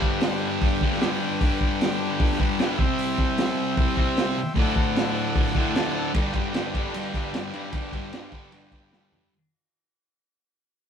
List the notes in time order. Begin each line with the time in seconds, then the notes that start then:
Already playing: G2 D3 G3 B4 D5 G5
0.02 kick
0.21 snare, open hi-hat
0.61 kick, open hi-hat
0.81 D3 G3, kick
0.86 G2
0.92 snare
1.01 G2 D3, snare, open hi-hat
1.05 G3
1.41 G2 D3, kick, open hi-hat
1.45 G3
1.61 kick
1.81 snare, open hi-hat
2.20 kick, open hi-hat
2.32 snare
2.40 G2 D3 G3, kick
2.59 G2 D3, snare, open hi-hat
2.63 G3
2.77 C3 G3 C5 E5 G5, kick
2.82 C4
2.98 open hi-hat
3.18 kick
3.38 snare, open hi-hat
3.77 C3 G3 C4, kick, open hi-hat
3.96 C3 G3 C4, kick
4.17 snare, open hi-hat
4.54 D2 A2 D5, kick, open hi-hat
4.59 D3 A4 F#5
4.76 kick
4.96 snare, open hi-hat
5.36 kick, open hi-hat
5.46 snare
5.55 D2 A2 D3 G5, kick
5.74 D2 A2 A5, snare, open hi-hat
5.78 D3
6.14 G2 D3 G3 B4 D5 G5, kick, ride
6.33 G2 D3 G3, kick, ride
6.54 G2 D3 G3, snare, ride
6.74 G2 D3 G3, kick, ride
6.94 G2 D3 G3, ride
7.14 G2 D3 G3, kick, ride
7.33 G2 D3 G3, snare, ride
7.53 G2 D3 G3, ride
7.73 G2 D3 G3, kick, ride
7.93 G2 D3 G3, kick, ride
8.13 G2 D3 G3, snare, ride
8.32 G2 D3 G3, kick, ride
8.52 G2 D3 G3, ride
8.72 G2 D3 G3, kick, ride
8.93 G2 D3 G3, snare
9.12 G2 D3 G3, floor tom